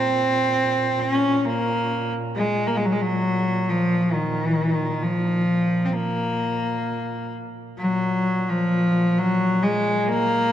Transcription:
Already playing: A#2 C4
1.00 C#4
1.45 A#3
2.36 G#3
2.67 A#3
2.77 G#3
2.85 F#3
2.92 G#3
3.01 F#3
3.69 F3
4.13 D#3
5.03 F3
5.85 C4
5.93 A#3
7.78 A#2 F#3
8.49 F3
9.19 F#3
9.63 G#3
10.08 A#3

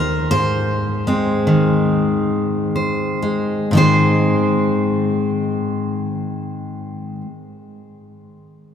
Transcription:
Already playing: D#2 D#3 D#4 A#4 C5
0.31 G#2 C5
1.07 G#3 C4
1.47 D#3
2.76 C5
3.22 G#3
3.71 G#2 D#3 G#3
3.77 C4 C5

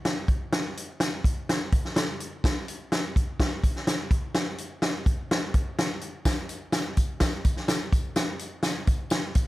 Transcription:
0.05 snare, closed hi-hat
0.28 kick, closed hi-hat
0.52 snare, closed hi-hat
0.77 closed hi-hat
1.00 snare, closed hi-hat
1.24 kick, closed hi-hat
1.49 snare, closed hi-hat
1.72 kick, closed hi-hat
1.85 snare
1.96 snare, closed hi-hat
2.20 closed hi-hat
2.44 kick, snare, closed hi-hat
2.68 closed hi-hat
2.92 snare, closed hi-hat
3.16 kick, closed hi-hat
3.40 kick, snare, closed hi-hat
3.64 kick, closed hi-hat
3.76 snare
3.87 snare, closed hi-hat
4.11 kick, closed hi-hat
4.34 snare, closed hi-hat
4.58 closed hi-hat
4.82 snare, closed hi-hat
5.06 kick, closed hi-hat
5.31 snare, closed hi-hat
5.54 kick, closed hi-hat
5.79 snare, closed hi-hat
6.01 closed hi-hat
6.25 kick, snare, closed hi-hat, tambourine
6.49 closed hi-hat, tambourine
6.72 snare, closed hi-hat, tambourine
6.97 kick, closed hi-hat, tambourine
7.20 kick, snare, closed hi-hat, tambourine
7.44 kick, closed hi-hat, tambourine
7.57 snare
7.68 snare, closed hi-hat, tambourine
7.93 kick, closed hi-hat, tambourine
8.16 snare, closed hi-hat, tambourine
8.39 closed hi-hat, tambourine
8.63 snare, closed hi-hat, tambourine
8.87 kick, closed hi-hat, tambourine
9.10 snare, closed hi-hat, tambourine
9.35 kick, closed hi-hat, tambourine

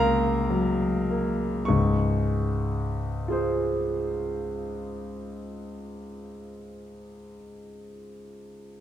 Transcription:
Already playing: C#2 A#3 A#4 F5 A#5 C6 F6
0.50 F#3
1.10 A#3
1.65 C#2 G#2 C#6
3.28 F4 G#4 C5

